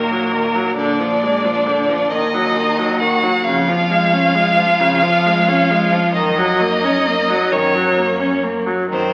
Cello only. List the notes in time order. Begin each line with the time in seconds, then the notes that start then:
Already playing: A#2
0.77 A#2
2.12 D#2
3.46 F2
4.79 F2
6.15 F#2
7.53 F#2
8.92 F#2